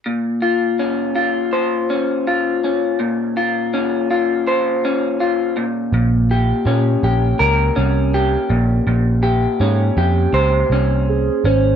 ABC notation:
X:1
M:4/4
L:1/8
Q:"Swing 16ths" 1/4=82
K:Bbdor
V:1 name="Soft synth lead"
z8 | z8 | z8 | z6 A c |]
V:2 name="Clean electric guitar"
B,, F D F c D F D | B,, F D F c D F B,, | B,, G D G B D G B,, | B,, G D G c D2 D |]
V:3 name="Picked electric bass" clef=bass
z8 | z8 | B,,,2 B,, B,,, D,, C,,2 B,,, | B,,,2 A,, F,, D,, C,,2 A,,, |]